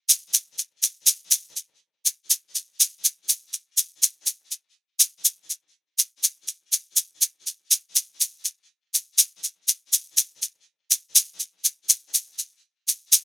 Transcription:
0.09 shaker
0.34 shaker
0.59 shaker
0.83 shaker
1.07 shaker
1.31 shaker
1.56 shaker
2.06 shaker
2.30 shaker
2.55 shaker
2.80 shaker
3.05 shaker
3.29 shaker
3.53 shaker
3.78 shaker
4.03 shaker
4.26 shaker
4.51 shaker
5.00 shaker
5.25 shaker
5.50 shaker
5.99 shaker
6.23 shaker
6.48 shaker
6.72 shaker
6.96 shaker
7.22 shaker
7.47 shaker
7.71 shaker
7.96 shaker
8.21 shaker
8.45 shaker
8.94 shaker
9.18 shaker
9.44 shaker
9.68 shaker
9.93 shaker
10.17 shaker
10.42 shaker
10.91 shaker
11.16 shaker
11.40 shaker
11.65 shaker
11.89 shaker
12.14 shaker
12.39 shaker
12.88 shaker
13.13 shaker

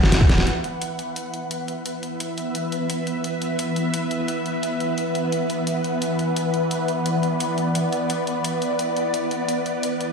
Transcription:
Already playing: F#1 E3 B3 B4 F#5
0.04 snare
0.12 snare, closed hi-hat, ride
0.21 kick
0.29 snare, closed hi-hat
0.38 snare
0.47 E3 B3 B4 E5, closed hi-hat
0.64 closed hi-hat
0.82 closed hi-hat
0.99 closed hi-hat
1.16 closed hi-hat
1.34 closed hi-hat
1.51 closed hi-hat
1.68 closed hi-hat
1.86 closed hi-hat
2.03 closed hi-hat
2.20 closed hi-hat
2.38 closed hi-hat
2.55 closed hi-hat
2.72 closed hi-hat
2.90 closed hi-hat
3.07 closed hi-hat
3.24 closed hi-hat
3.42 closed hi-hat
3.59 closed hi-hat
3.76 closed hi-hat
3.94 closed hi-hat
4.11 closed hi-hat
4.28 closed hi-hat
4.46 closed hi-hat
4.63 closed hi-hat
4.80 closed hi-hat
4.98 closed hi-hat
5.15 closed hi-hat
5.32 closed hi-hat
5.50 closed hi-hat
5.67 closed hi-hat
5.84 closed hi-hat
6.02 D5, closed hi-hat
6.19 closed hi-hat
6.36 closed hi-hat
6.54 closed hi-hat
6.71 closed hi-hat
6.88 closed hi-hat
7.06 closed hi-hat
7.23 closed hi-hat
7.40 closed hi-hat
7.58 closed hi-hat
7.75 closed hi-hat
7.92 closed hi-hat
8.10 closed hi-hat
8.27 closed hi-hat
8.44 closed hi-hat
8.62 closed hi-hat
8.79 closed hi-hat
8.97 closed hi-hat
9.14 closed hi-hat
9.31 closed hi-hat
9.49 closed hi-hat
9.66 closed hi-hat
9.83 closed hi-hat
10.01 closed hi-hat

